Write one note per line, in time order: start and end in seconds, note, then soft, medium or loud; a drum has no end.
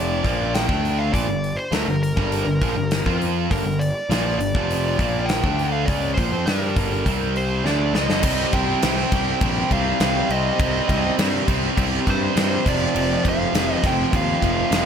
0.00 0.21 F1 loud
0.00 0.23 F2 medium
0.00 0.23 C3 loud
0.00 0.23 F3 loud
0.00 0.56 D5 medium
0.24 0.66 A#1 loud
0.24 0.67 A#2 medium
0.24 0.68 F3 loud
0.24 0.68 A#3 loud
0.24 kick loud
0.24 open hi-hat soft
0.54 1.00 G5 loud
0.54 snare loud
0.54 open hi-hat medium
0.68 1.10 D2 medium
0.68 1.12 D3 medium
0.68 1.12 A3 medium
0.68 1.12 D4 medium
0.68 kick loud
0.85 open hi-hat soft
0.99 1.13 F5 medium
1.13 1.27 A#1 medium
1.13 1.27 A#2 medium
1.13 1.27 F3 loud
1.13 1.59 D5 loud
1.13 kick medium
1.13 open hi-hat medium
1.27 1.55 G1 medium
1.27 1.52 G2 medium
1.27 1.52 D3 medium
1.44 open hi-hat medium
1.56 1.73 C5 medium
1.72 1.86 D2 loud
1.72 1.86 D3 medium
1.72 1.86 A3 loud
1.72 2.02 A#4 medium
1.72 snare loud
1.72 open hi-hat medium
1.86 2.14 G1 medium
1.86 2.10 G2 medium
1.86 2.11 D3 medium
2.03 3.17 A#4 medium
2.03 open hi-hat medium
2.16 2.44 G1 medium
2.16 2.45 G2 medium
2.16 2.45 D3 medium
2.16 2.46 G3 loud
2.16 kick medium
2.32 open hi-hat medium
2.46 2.60 G1 medium
2.46 2.61 G2 medium
2.46 2.61 D3 medium
2.61 2.75 A#1 medium
2.61 2.75 A#2 loud
2.61 2.75 F3 medium
2.61 kick loud
2.61 open hi-hat medium
2.76 3.03 G1 medium
2.76 3.00 G2 medium
2.76 3.00 D3 medium
2.91 snare loud
2.91 open hi-hat medium
3.06 3.47 F2 medium
3.06 3.49 F3 medium
3.06 3.50 C4 loud
3.06 3.50 F4 medium
3.06 kick loud
3.22 open hi-hat medium
3.50 3.64 G1 medium
3.50 3.64 G2 medium
3.50 3.64 D3 medium
3.50 3.81 A#4 medium
3.50 kick loud
3.50 open hi-hat medium
3.64 3.92 G1 medium
3.64 3.89 G2 medium
3.64 3.89 D3 medium
3.79 4.37 D5 medium
3.79 open hi-hat medium
4.09 4.37 A#1 loud
4.09 4.38 A#2 medium
4.09 4.38 F3 loud
4.09 4.39 A#3 medium
4.09 snare loud
4.09 open hi-hat medium
4.39 4.53 G1 medium
4.39 4.54 G2 medium
4.39 4.54 D3 medium
4.39 5.30 D5 medium
4.39 open hi-hat medium
4.54 4.96 F1 medium
4.54 4.98 F2 medium
4.54 4.98 C3 loud
4.54 4.98 F3 loud
4.54 kick loud
4.71 open hi-hat medium
4.99 5.40 A#1 medium
4.99 5.42 A#2 medium
4.99 5.42 F3 medium
4.99 5.42 A#3 medium
4.99 kick loud
4.99 open hi-hat soft
5.26 5.68 G5 loud
5.26 open hi-hat medium
5.30 snare loud
5.44 5.84 D2 medium
5.44 5.87 D3 medium
5.44 5.87 A3 medium
5.44 5.87 D4 medium
5.44 kick loud
5.59 open hi-hat soft
5.72 5.87 F5 medium
5.86 6.15 C#2 medium
5.86 6.17 C#3 medium
5.86 6.17 G#3 medium
5.86 6.17 C#4 loud
5.86 6.14 D5 loud
5.86 kick loud
5.86 open hi-hat medium
6.14 6.31 A#1 medium
6.14 6.31 A#2 medium
6.14 6.31 F3 medium
6.14 6.46 C5 medium
6.14 kick loud
6.14 open hi-hat medium
6.32 6.45 F2 medium
6.32 6.46 F3 loud
6.32 6.46 C4 medium
6.46 6.74 G2 loud
6.46 6.75 G3 medium
6.46 6.76 D4 medium
6.46 6.76 G4 loud
6.46 7.90 A#4 medium
6.46 snare loud
6.46 open hi-hat medium
6.76 7.04 G1 medium
6.76 7.05 G2 medium
6.76 7.05 D3 medium
6.76 7.05 G3 loud
6.76 kick loud
6.76 open hi-hat medium
7.06 7.61 C2 medium
7.06 7.64 C3 loud
7.06 7.65 G3 medium
7.06 7.65 C4 loud
7.06 kick medium
7.06 open hi-hat medium
7.36 7.65 C5 medium
7.36 open hi-hat medium
7.64 7.92 D2 medium
7.64 7.94 D3 medium
7.64 7.94 A3 medium
7.64 7.94 D4 medium
7.64 7.95 D5 medium
7.64 snare medium
7.94 8.08 C#2 medium
7.94 8.08 C#3 medium
7.94 8.09 G#3 loud
7.94 8.56 D#5 medium
7.94 snare medium
8.09 8.22 G1 medium
8.09 8.23 G2 loud
8.09 8.23 D3 loud
8.09 snare medium
8.23 8.44 C2 loud
8.23 8.54 C3 medium
8.23 8.55 G3 medium
8.23 8.55 C4 loud
8.23 kick loud
8.23 crash loud
8.23 crash medium
8.53 8.74 C2 medium
8.53 8.83 C3 medium
8.53 8.83 G3 medium
8.53 8.84 C4 medium
8.53 9.11 G5 loud
8.53 kick loud
8.53 crash medium
8.82 9.04 C2 loud
8.82 9.11 C3 medium
8.82 9.12 G3 loud
8.82 9.13 C4 loud
8.82 snare loud
8.82 crash medium
9.12 9.32 C2 loud
9.12 9.41 C3 medium
9.12 9.42 G3 medium
9.12 9.43 C4 medium
9.12 9.72 G5 loud
9.12 kick loud
9.12 crash medium
9.41 9.62 A#1 loud
9.41 9.70 C3 loud
9.41 9.70 G3 loud
9.41 9.72 C4 loud
9.41 kick loud
9.41 crash medium
9.71 9.91 C2 loud
9.71 9.99 C3 medium
9.71 10.00 G3 medium
9.71 10.01 C4 medium
9.71 10.33 F5 medium
9.71 kick medium
9.71 crash medium
10.00 10.21 C2 loud
10.00 10.28 C3 medium
10.00 10.29 G3 medium
10.00 10.30 C4 loud
10.00 snare loud
10.00 crash medium
10.29 10.50 C2 medium
10.29 10.58 C3 loud
10.29 10.59 G3 medium
10.29 10.60 C4 medium
10.29 11.15 D#5 medium
10.29 crash medium
10.59 10.80 C2 loud
10.59 10.87 C3 loud
10.59 10.87 G3 medium
10.59 10.88 C4 loud
10.59 kick loud
10.59 crash medium
10.88 11.09 C2 medium
10.88 11.16 C3 medium
10.88 11.17 G3 medium
10.88 11.18 C4 medium
10.88 kick medium
10.88 crash medium
11.18 11.39 G2 loud
11.18 11.46 C3 medium
11.18 11.46 G3 medium
11.18 11.48 C4 medium
11.18 snare loud
11.18 crash medium
11.47 11.68 C2 medium
11.47 11.75 C3 medium
11.47 11.76 G3 medium
11.47 11.77 C4 loud
11.47 kick loud
11.47 crash medium
11.76 11.98 C2 loud
11.76 12.04 C3 loud
11.76 12.05 G3 loud
11.76 12.06 C4 loud
11.76 kick loud
11.76 crash medium
12.06 12.27 G2 loud
12.06 12.34 C3 medium
12.06 12.35 G3 medium
12.06 12.36 C4 medium
12.06 kick medium
12.06 crash medium
12.10 12.69 C5 medium
12.35 12.56 G2 medium
12.35 12.63 C3 medium
12.35 12.64 G3 medium
12.35 14.86 C4 medium
12.35 snare loud
12.35 crash medium
12.65 12.86 F1 medium
12.65 12.94 F2 loud
12.65 12.94 C3 loud
12.65 12.95 F3 loud
12.65 13.27 D5 medium
12.65 kick loud
12.65 crash medium
12.94 13.15 F1 loud
12.94 13.23 F2 loud
12.94 13.23 C3 loud
12.94 13.24 F3 medium
12.94 crash medium
13.23 13.45 F1 medium
13.23 13.52 F2 medium
13.23 13.52 C3 medium
13.23 13.53 F3 loud
13.23 kick loud
13.23 crash medium
13.29 13.74 F5 loud
13.52 13.74 F1 medium
13.52 13.82 F2 medium
13.52 13.82 C3 medium
13.52 13.83 F3 medium
13.52 snare loud
13.52 crash medium
13.74 13.87 D#5 loud
13.82 14.04 F1 loud
13.82 14.11 F2 medium
13.82 14.11 C3 medium
13.82 14.12 F3 medium
13.82 14.15 G5 loud
13.82 kick loud
13.82 snare soft
13.82 crash medium
14.12 14.33 D#2 medium
14.12 14.40 F2 loud
14.12 14.40 C3 loud
14.12 14.41 F3 loud
14.12 kick loud
14.12 crash medium
14.16 14.73 F5 loud
14.41 14.62 F1 medium
14.41 14.70 F2 medium
14.41 14.70 C3 medium
14.41 14.71 F3 loud
14.41 kick medium
14.41 crash medium
14.71 14.86 F1 medium
14.71 14.86 F2 medium
14.71 14.86 C3 medium
14.71 14.86 F3 medium
14.71 14.86 F5 medium
14.71 snare loud
14.71 crash medium